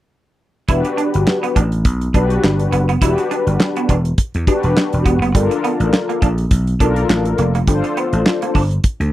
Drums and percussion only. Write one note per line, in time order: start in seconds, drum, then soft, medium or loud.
0.68 kick loud
0.68 closed hi-hat medium
0.85 closed hi-hat soft
0.98 closed hi-hat medium
1.14 closed hi-hat soft
1.27 snare loud
1.27 clap medium
1.43 closed hi-hat soft
1.56 kick medium
1.56 closed hi-hat medium
1.72 closed hi-hat soft
1.85 kick loud
1.85 closed hi-hat medium
2.01 closed hi-hat soft
2.14 kick medium
2.14 closed hi-hat medium
2.30 closed hi-hat soft
2.44 snare loud
2.44 clap medium
2.59 closed hi-hat soft
2.72 closed hi-hat medium
2.89 closed hi-hat soft
3.02 kick loud
3.02 closed hi-hat loud
3.18 closed hi-hat soft
3.31 closed hi-hat medium
3.47 closed hi-hat soft
3.60 snare loud
3.60 clap medium
3.76 closed hi-hat soft
3.89 kick medium
3.89 closed hi-hat medium
4.05 closed hi-hat soft
4.18 kick loud
4.18 closed hi-hat medium
4.34 closed hi-hat soft
4.47 kick medium
4.47 closed hi-hat medium
4.63 closed hi-hat soft
4.77 snare loud
4.77 clap medium
4.93 closed hi-hat soft
5.06 kick medium
5.06 closed hi-hat medium
5.22 closed hi-hat soft
5.35 kick loud
5.35 closed hi-hat loud
5.51 closed hi-hat soft
5.64 closed hi-hat medium
5.80 closed hi-hat soft
5.93 snare loud
5.93 clap medium
6.10 closed hi-hat soft
6.22 kick medium
6.22 closed hi-hat medium
6.38 closed hi-hat soft
6.51 kick loud
6.51 closed hi-hat medium
6.67 closed hi-hat soft
6.80 kick medium
6.80 closed hi-hat medium
6.96 closed hi-hat soft
7.10 snare loud
7.10 clap loud
7.25 closed hi-hat soft
7.38 closed hi-hat medium
7.55 closed hi-hat soft
7.67 kick loud
7.67 closed hi-hat loud
7.84 closed hi-hat soft
7.97 closed hi-hat medium
8.13 closed hi-hat soft
8.26 snare loud
8.26 clap medium
8.42 closed hi-hat soft
8.55 kick medium
8.55 open hi-hat medium
8.71 closed hi-hat soft
8.84 kick loud
8.84 closed hi-hat medium
9.01 closed hi-hat soft